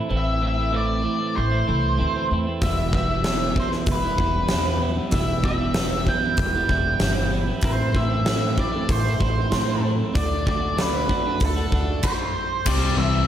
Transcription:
Already playing: E4
0.09 A1 A2 E3 A3 C4 E4
0.17 E5
0.41 E3 A3 C4 E4
0.47 E5
0.57 A3 C4 E4
0.72 A2 E3 A3 C4 E4
0.76 D5
1.03 E3 A3 C4 E4
1.19 A3 C4 E4
1.36 A1 C5
1.51 A3 C4 E4
1.67 C2 E3 A3 C4 E4
1.98 D2 A2 E3 A3 C4 E4
2.14 A3 C4 E4
2.31 E2 E3 A3 C4 E4
2.47 A3 C4 E4
2.61 E1 E2 B2 E3 G3 B3 E4 E5, kick, open hi-hat
2.93 E3 G3 B3 E4 E5, kick
3.09 E3 G3 B3 E4
3.24 E2 B2 E3 G3 E4, snare, open hi-hat
3.56 E3 G3 E4 C5, kick
3.71 E3 G3 B3 E4, snare
3.86 E1, kick, open hi-hat
3.92 B4
4.02 E3 G3 B3 E4
4.17 E1 E3 G3 B3 E4, kick
4.48 E2 B2 E3 G3 B3 E4, snare, open hi-hat
4.65 E3 G3 B3 E4
4.82 E3 G3 B3 E4
4.97 E3 G3 B3 E4
5.11 E1 E2 B2 E3 G3 B3 E5, kick, open hi-hat
5.15 E4
5.44 E3 G3 B3 E4 E5, kick
5.60 E3 G3 B3 E4
5.74 E2 B2 E3 G3 B3 E4, snare, open hi-hat
6.07 E3 G3 B3 E4 G5, kick
6.23 E3 G3 B3 E4
6.37 E1 G5, kick, open hi-hat
6.55 E3 G3 B3 E4
6.69 E1 E3 G3 B3 E4, kick
7.00 G1 E2 B2 E3 G3 B3 E4, snare, open hi-hat
7.17 E3 G3 B3 E4
7.31 E3 G3 B3 E4
7.47 E3 G3 B3 E4
7.61 A1 A2 E3 A3 C4 E4 C5, kick, open hi-hat
7.94 E3 A3 C4 E4 E5, kick
8.10 A3 C4 E4
8.26 A2 E3 A3 C4 E4, snare, open hi-hat
8.56 E3 A3 C4 E4 D5, kick
8.72 A3 C4 E4
8.89 A1 C5, kick, open hi-hat
9.04 A3 C4 E4
9.20 A1 E3 A3 C4 E4, kick
9.51 A2 E3 A3 C4 E4, snare, open hi-hat
9.67 A3 C4 E4
9.83 E3 A3 C4 E4
9.99 A3 C4 E4
10.13 D2 D3 A3 D4 F#4 D5, kick, open hi-hat
10.45 D3 A3 D4 F#4 D5, kick
10.60 A3 D4 F#4
10.77 D3 A3 D4 F#4, snare, open hi-hat
10.81 B4
11.08 D3 A3 D4 F#4, kick
11.26 A3 D4 F#4
11.40 D2, kick, open hi-hat
11.45 A4
11.56 A3 D4 F#4
11.72 D2 D3 A3 D4 F#4, kick
12.03 C5, kick, crash
12.66 C2 C3 G3 C4 D5, kick, crash
12.97 C3 E3 G3 E5

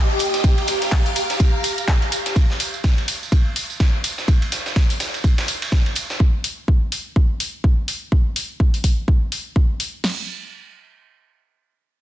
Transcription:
Already playing: G4 D#5 D6
0.19 open hi-hat, ride, tambourine
0.34 snare, closed hi-hat, tambourine
0.44 F5 A#5, kick, closed hi-hat, ride
0.58 ride
0.68 snare, open hi-hat, ride, tambourine
0.82 snare, closed hi-hat, tambourine
0.92 kick, snare, clap, closed hi-hat, open hi-hat
1.06 open hi-hat
1.16 open hi-hat, ride, tambourine
1.30 snare, closed hi-hat, tambourine
1.40 kick, closed hi-hat, ride
1.64 open hi-hat, ride, tambourine
1.78 closed hi-hat, tambourine
1.88 kick, snare, clap, closed hi-hat, ride
2.02 ride
2.12 open hi-hat, ride, tambourine
2.26 snare, closed hi-hat, tambourine
2.36 kick, ride, tambourine
2.50 snare
2.60 open hi-hat, ride, tambourine
2.74 tambourine
2.84 kick, snare, ride, tambourine
2.98 ride
3.08 open hi-hat, ride, tambourine
3.23 tambourine
3.32 kick, ride
3.56 open hi-hat, ride, tambourine
3.70 tambourine
3.80 kick, snare, ride
4.04 open hi-hat, ride, tambourine
4.18 snare, tambourine
4.28 kick, ride, tambourine
4.42 ride
4.52 snare, open hi-hat, ride, tambourine
4.66 snare, tambourine
4.76 kick, snare, open hi-hat
4.90 open hi-hat
5.00 snare, open hi-hat, ride, tambourine
5.14 ride, tambourine
5.24 kick, ride, tambourine
5.38 snare, ride
5.48 open hi-hat, ride, tambourine
5.62 ride, tambourine
5.72 kick, snare, ride, tambourine
5.86 ride
5.95 open hi-hat, ride, tambourine
6.10 snare, tambourine
6.20 kick
6.44 open hi-hat
6.68 kick
6.92 open hi-hat
7.16 kick
7.40 open hi-hat
7.64 kick
7.88 open hi-hat
8.12 kick
8.36 open hi-hat
8.60 kick
8.74 open hi-hat
8.84 kick, open hi-hat
9.08 kick
9.32 open hi-hat
9.56 kick
9.80 open hi-hat
10.04 snare, crash

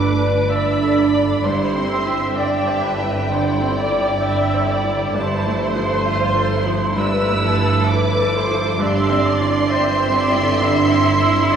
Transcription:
Already playing: G1 G2 D3 G3 A3 D4 A4 B4 D5 D6
0.03 D3 B4
0.19 D4
0.27 D4
0.49 D4 D5 E5 B5
0.75 D4
0.83 A4
0.97 A3 D5
1.15 D4
1.22 D3
1.44 G1 G2 E4 C5 C6
1.68 D3
1.76 C4
1.91 C4 E5
2.06 E4
2.14 G4
2.36 D4 D5 E5 G5
2.67 C5
2.84 C4 B4
2.98 E4
3.07 D3
3.30 G2 D3 E4 C5 D5
3.54 C4
3.60 C4
3.78 D3 D5
3.92 E4
4.23 E4 D5 E5
4.54 C5
4.69 C4 D5
4.84 E4
4.93 D3
5.14 G1 G2 C5 A5
5.39 F3
5.46 A3
5.61 A3 C6
5.76 F3
5.85 A4
6.06 F4 E5
6.30 E4
6.36 A4
6.52 A3 E4
6.66 F3
6.75 F3
6.96 G2 B4 E6
7.20 A3
7.28 A3
7.43 F3 A4
7.58 F3
7.87 A4 B4 E5 D6
8.18 A4
8.34 A3 C5
8.48 F3
8.57 F3
8.79 G1 G2 D4 D5 E5 C6
9.02 D3
9.10 C4
9.25 C4 D5
9.40 E4
9.47 E4
9.70 C4 C5 D5 E5
9.93 E4
10.00 C5
10.16 C4 D5
10.31 E4
10.39 D3
10.61 G2 D3 E4 E5
10.84 C4
10.92 C4
11.07 D3
11.22 E4
11.30 E4
11.52 D5

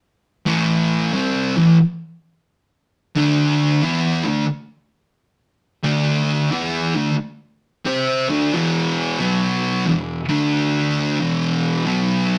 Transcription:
0.46 A2 E3 A3
1.13 C3 G3 C4
1.56 A2 E3
3.15 D3 A3 D4
3.83 E3 B3 E4
4.25 D3 A3
5.84 D3 A3 D4
6.51 E3 B3 E4
6.95 D3 A3
7.85 C4 G4 C5
8.29 D3 A3 D4
8.53 E2 B2 E3
9.19 B2 F#3 B3
9.86 E2 B2
10.29 D3 A3 D4
11.20 E2 B2 E3
11.86 B2 F#3 B3

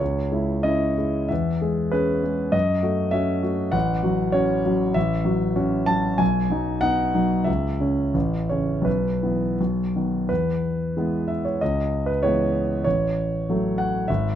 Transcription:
Already playing: C#5
0.00 C#2
0.31 G#3 E4
0.63 C#4 E4 D#5
0.98 G#3 E4
1.28 E2 E5
1.62 G#3 G#4
1.92 C#4 G#4 B4
2.24 G#3 G#4
2.52 F#2 D#5
2.82 A3 F#4
3.11 C#4 F#4 E5
3.43 A3 F#4
3.72 A1 F#5
4.03 F#3 F#4
4.32 C#4 F#4 C#5
4.66 F#3 F#4
4.94 A1 E5
5.25 F#3 F#4
5.56 C#4 F#4
5.86 F#3 F#4 A5
6.18 B1 G#5
6.50 F#3 D#4
6.81 B3 D#4 F#5
7.14 F#3 D#4
7.44 C#2 E5
7.80 C#3 C#4
8.14 A1
8.49 C#3 C#4 C#5
8.82 B1 B4
9.23 E3 B3
9.61 B1
9.96 D#3 B3
10.29 E2 B4
10.97 E3 G#3 B3
11.28 E5
11.45 C#5
11.61 C#2 D#5
12.06 B4
12.23 E3 G#3 B3 C#5
12.84 A1 C#5
13.50 F#3 A3
13.78 F#5
14.08 G#1 E5

